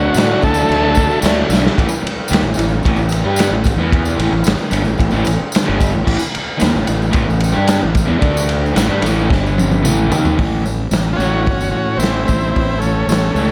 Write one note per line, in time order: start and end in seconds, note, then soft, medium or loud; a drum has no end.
0.00 0.13 D3 medium
0.00 0.15 F#3 medium
0.00 0.17 A3 medium
0.00 0.18 D4 medium
0.00 0.18 F#4 medium
0.14 0.34 A2 medium
0.14 0.39 D3 loud
0.14 0.31 F#3 loud
0.14 0.28 A3 loud
0.14 snare loud
0.14 tambourine loud
0.14 crash medium
0.19 0.26 D4 loud
0.19 0.43 F#4 loud
0.27 0.42 A3 medium
0.27 0.43 D4 medium
0.32 0.41 F#3 medium
0.40 0.62 D2 loud
0.40 0.81 D3 medium
0.40 0.57 F#3 medium
0.40 0.55 A3 medium
0.40 kick medium
0.40 tambourine soft
0.44 0.52 D4 medium
0.44 1.20 A4 loud
0.53 0.81 A3 medium
0.53 0.80 D4 medium
0.53 tambourine medium
0.58 0.84 F#3 medium
0.69 1.07 D2 medium
0.69 tambourine soft
0.69 crash medium
0.81 0.96 A3 medium
0.81 0.98 D4 medium
0.85 0.95 F#3 medium
0.93 1.18 D3 medium
0.93 1.11 F#3 medium
0.93 tambourine medium
0.97 1.09 A3 medium
0.97 1.07 D4 medium
0.97 kick medium
1.08 1.21 A3 medium
1.08 1.23 D4 medium
1.08 tambourine soft
1.12 1.20 F#3 medium
1.19 1.42 D2 loud
1.19 1.46 D3 medium
1.19 1.47 F#3 loud
1.19 1.49 A3 loud
1.19 tambourine loud
1.24 1.51 D4 medium
1.24 snare loud
1.24 crash medium
1.47 1.68 B1 medium
1.47 1.73 D3 medium
1.47 1.64 F#3 medium
1.47 1.62 A3 medium
1.47 tambourine medium
1.52 1.59 D4 medium
1.52 snare medium
1.60 1.75 A3 medium
1.60 1.74 D4 medium
1.66 1.75 F#3 medium
1.66 snare medium
1.74 1.88 A1 medium
1.74 1.88 A2 medium
1.74 1.89 E3 loud
1.78 kick loud
1.78 ride loud
1.89 muted fingered electric bass stroke soft
1.89 muted overdriven electric guitar stroke medium
1.89 tambourine medium
2.02 muted overdriven electric guitar stroke medium
2.02 muted fingered electric bass stroke soft
2.07 ride medium
2.28 2.42 D#2 medium
2.28 2.42 D#3 medium
2.28 2.43 A#3 loud
2.28 tambourine loud
2.33 snare loud
2.33 ride loud
2.41 2.56 A1 medium
2.41 2.56 A2 medium
2.41 2.57 E3 medium
2.41 tambourine soft
2.54 2.82 A1 medium
2.54 2.79 A2 medium
2.54 2.79 E3 medium
2.54 tambourine medium
2.59 ride medium
2.69 tambourine soft
2.83 2.95 A1 medium
2.83 2.97 A2 loud
2.83 2.97 E3 loud
2.83 kick loud
2.83 ride loud
2.83 tambourine soft
2.96 3.22 A1 medium
2.96 3.20 A2 medium
2.96 tambourine soft
3.00 3.20 E3 medium
3.09 ride medium
3.09 tambourine medium
3.24 3.50 G2 loud
3.24 3.50 G3 loud
3.24 3.51 D4 loud
3.24 3.52 G4 loud
3.36 ride loud
3.36 tambourine loud
3.40 snare loud
3.51 3.76 A1 medium
3.51 3.73 A2 medium
3.51 3.73 E3 medium
3.64 kick medium
3.64 ride medium
3.64 tambourine medium
3.76 4.15 E2 loud
3.76 4.17 E3 medium
3.76 4.18 B3 loud
3.80 4.19 E4 loud
3.92 kick loud
3.92 ride medium
4.05 tambourine medium
4.18 4.30 A1 loud
4.18 4.31 A2 loud
4.18 4.31 E3 loud
4.18 ride medium
4.31 4.44 A1 medium
4.31 4.44 A2 medium
4.31 4.44 E3 medium
4.44 4.58 A1 medium
4.44 4.56 A2 medium
4.44 4.59 E3 medium
4.44 snare loud
4.44 ride loud
4.44 tambourine loud
4.58 muted overdriven electric guitar stroke medium
4.58 muted fingered electric bass stroke soft
4.58 tambourine soft
4.70 4.84 G1 loud
4.70 4.84 G2 medium
4.70 4.83 D3 loud
4.70 ride medium
4.70 tambourine medium
4.83 4.98 A1 medium
4.83 4.98 A2 medium
4.83 4.97 E3 medium
4.83 tambourine soft
4.98 5.11 A1 medium
4.98 5.10 A2 medium
4.98 5.11 E3 medium
4.98 kick loud
4.98 ride loud
4.98 tambourine soft
5.11 5.25 A1 loud
5.11 5.24 A2 loud
5.11 5.25 E3 loud
5.11 tambourine soft
5.25 5.39 A1 medium
5.25 5.37 A2 medium
5.25 5.39 E3 medium
5.25 ride medium
5.25 tambourine medium
5.38 muted overdriven electric guitar stroke medium
5.38 muted fingered electric bass stroke soft
5.52 ride loud
5.52 tambourine medium
5.56 snare loud
5.64 5.91 G2 medium
5.64 5.92 D3 loud
5.64 5.92 G3 loud
5.69 5.93 G1 medium
5.80 kick medium
5.80 ride medium
5.80 tambourine medium
5.93 6.06 A1 medium
5.93 6.03 A2 medium
5.93 6.05 E3 medium
6.05 6.19 A1 medium
6.05 6.18 A2 loud
6.05 6.19 E3 loud
6.05 kick loud
6.05 crash loud
6.19 muted overdriven electric guitar stroke medium
6.19 muted fingered electric bass stroke soft
6.19 tambourine medium
6.32 muted overdriven electric guitar stroke medium
6.32 muted fingered electric bass stroke soft
6.32 ride medium
6.58 6.73 D#2 medium
6.58 6.72 D#3 loud
6.58 6.72 A#3 loud
6.58 ride loud
6.58 tambourine medium
6.63 snare loud
6.73 6.86 A1 medium
6.73 6.83 A2 medium
6.73 6.84 E3 medium
6.84 7.13 A1 medium
6.84 7.07 A2 medium
6.84 7.08 E3 medium
6.84 ride medium
6.84 tambourine medium
7.02 tambourine soft
7.10 7.27 A1 medium
7.10 7.24 A2 loud
7.10 7.25 E3 loud
7.10 ride loud
7.14 kick loud
7.14 tambourine soft
7.25 7.53 A1 medium
7.25 7.48 A2 medium
7.25 7.49 E3 medium
7.30 tambourine soft
7.40 ride medium
7.40 tambourine medium
7.52 7.79 G3 loud
7.52 7.80 D4 loud
7.52 7.80 G4 loud
7.57 7.81 G2 loud
7.67 snare loud
7.67 ride loud
7.67 tambourine loud
7.79 8.07 A1 medium
7.79 8.02 A2 medium
7.79 8.02 E3 medium
7.95 kick loud
7.95 ride medium
7.95 tambourine medium
8.06 8.20 E2 loud
8.06 8.17 E3 medium
8.06 8.19 B3 loud
8.18 8.72 D2 medium
8.18 8.73 D3 loud
8.18 8.74 A3 loud
8.18 8.74 D4 loud
8.22 kick loud
8.22 ride loud
8.37 tambourine medium
8.49 ride medium
8.66 tambourine soft
8.74 8.88 A1 medium
8.74 8.88 A2 medium
8.74 8.88 E3 loud
8.74 snare loud
8.74 ride loud
8.74 tambourine loud
8.89 9.01 G2 loud
8.89 9.02 G3 medium
8.89 9.03 D4 loud
9.02 9.28 A1 medium
9.02 9.29 A2 loud
9.02 9.29 E3 loud
9.02 9.30 A3 loud
9.02 ride medium
9.06 tambourine medium
9.19 tambourine soft
9.28 9.81 G1 medium
9.28 9.83 G2 loud
9.28 9.82 D3 loud
9.28 9.83 G3 loud
9.28 kick loud
9.28 snare medium
9.34 tambourine soft
9.46 tambourine soft
9.58 high tom medium
9.58 tambourine medium
9.71 high tom medium
9.71 tambourine soft
9.82 10.08 A1 medium
9.82 10.09 A2 medium
9.82 10.10 E3 medium
9.82 10.10 A3 loud
9.82 mid tom medium
9.82 tambourine loud
9.98 tambourine soft
10.09 10.35 D#2 loud
10.09 10.36 D#3 loud
10.09 10.37 A#3 loud
10.09 10.38 D#4 loud
10.09 floor tom loud
10.09 tambourine medium
10.25 floor tom medium
10.25 tambourine soft
10.36 10.90 A1 medium
10.36 10.63 A2 medium
10.36 10.63 E3 medium
10.36 10.64 A3 loud
10.36 kick loud
10.36 open hi-hat medium
10.64 10.89 A2 medium
10.64 10.90 E3 medium
10.64 tambourine medium
10.91 11.17 A1 medium
10.91 11.17 A2 medium
10.91 11.17 E3 medium
10.91 snare loud
10.91 open hi-hat medium
10.91 tambourine medium
11.13 11.41 C#4 medium
11.13 11.17 F4 medium
11.17 11.44 A1 medium
11.17 11.44 A2 medium
11.17 11.44 E3 medium
11.17 11.46 A3 loud
11.17 11.43 F#4 medium
11.17 tambourine medium
11.43 11.71 A2 medium
11.43 11.71 E3 medium
11.43 11.69 C#4 medium
11.43 11.71 F#4 medium
11.43 open hi-hat soft
11.47 11.71 G1 medium
11.47 kick loud
11.61 tambourine medium
11.71 11.96 A2 medium
11.71 11.98 A2 medium
11.71 11.98 E3 medium
11.71 11.98 C#4 medium
11.71 12.00 F#4 medium
11.97 12.25 A1 medium
11.97 12.26 A2 medium
11.97 12.27 E3 medium
11.97 12.24 C4 medium
11.97 12.24 E4 medium
11.97 tambourine medium
12.01 12.27 A3 medium
12.01 snare loud
12.01 open hi-hat medium
12.25 12.54 A1 medium
12.25 12.53 A2 medium
12.25 12.53 E3 medium
12.25 12.50 C4 medium
12.25 12.50 E4 medium
12.25 tambourine medium
12.29 kick medium
12.41 tambourine soft
12.51 12.79 C4 medium
12.51 12.80 E4 medium
12.56 13.06 A1 medium
12.56 12.81 A2 medium
12.56 12.81 E3 medium
12.56 kick medium
12.56 open hi-hat soft
12.78 13.06 A3 medium
12.78 13.08 C#4 medium
12.78 tambourine medium
12.83 13.08 A2 medium
12.83 13.08 E3 medium
13.07 13.34 A1 medium
13.07 13.35 A2 medium
13.07 13.35 E3 medium
13.07 13.32 A3 medium
13.07 13.33 C#4 medium
13.07 tambourine medium
13.11 snare loud
13.11 open hi-hat medium
13.33 13.52 C#2 medium
13.33 13.52 A2 medium
13.33 13.52 A3 medium
13.33 13.52 C#4 medium
13.33 tambourine medium
13.37 13.52 E3 medium
13.37 13.52 A3 medium